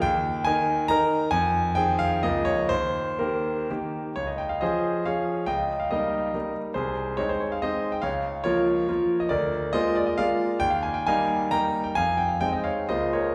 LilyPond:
<<
  \new Staff \with { instrumentName = "Grand piano" } { \time 3/4 \key ees \mixolydian \tempo 4 = 136 g''4 aes''4 bes''4 | aes''4 g''8 f''8 ees''8 des''8 | c''4 bes'4 r4 | des''16 ees''16 g''16 f''16 <c'' ees''>4 <des'' f''>4 |
<ees'' g''>8. f''16 <bes' ees''>4. r8 | <aes' c''>4 des''16 c''16 des''16 f''16 <c'' ees''>8. g''16 | <des'' f''>4 <bes' des''>4.~ <bes' des''>16 ees''16 | <bes' d''>4 <c'' ees''>8 d''16 ees''16 <d'' f''>4 |
g''16 f''16 aes''16 g''16 <f'' aes''>4 <g'' bes''>8. g''16 | <f'' aes''>8 g''16 f''16 g''16 ees''16 <des'' f''>8 <c'' ees''>8 <bes' des''>8 | }
  \new Staff \with { instrumentName = "Grand piano" } { \time 3/4 \key ees \mixolydian ees,4 <ees ees' bes'>4 <ees ees' bes'>4 | f,4 <ees c' aes'>4 <des, f bes aes'>4 | ees,4 <ees bes g'>4 <ees bes g'>4 | des,4 <f des' aes'>4 <f des' aes'>4 |
des,4 <g bes ees'>4 <g bes ees'>4 | c,4 <aes c' ees'>4 <aes c' ees'>4 | des,4 <f bes f'>4 <f bes f'>4 | d,4 <aes bes f'>4 <aes bes f'>4 |
ees,4 <g bes ees'>4 <g bes ees'>4 | f,4 <aes c' ees'>4 <des, aes bes f'>4 | }
>>